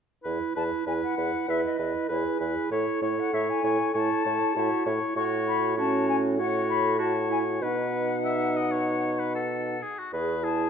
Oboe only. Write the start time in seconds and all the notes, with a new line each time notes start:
0.24 B4
0.55 B4
0.86 B4
1.17 B4
1.48 B4
1.79 B4
2.09 B4
2.40 B4
2.72 C#5
3.02 C#5
3.33 C#5
3.64 C#5
3.94 C#5
4.25 C#5
4.56 C#5
4.86 C#5
5.16 C#5
5.77 C#5
6.38 C#5
6.99 C#5
7.62 B4
8.24 E5
8.56 D#5
8.71 C#5
9.19 B4
9.35 A4
9.82 G#4
9.99 F#4
10.13 B4
10.44 G#4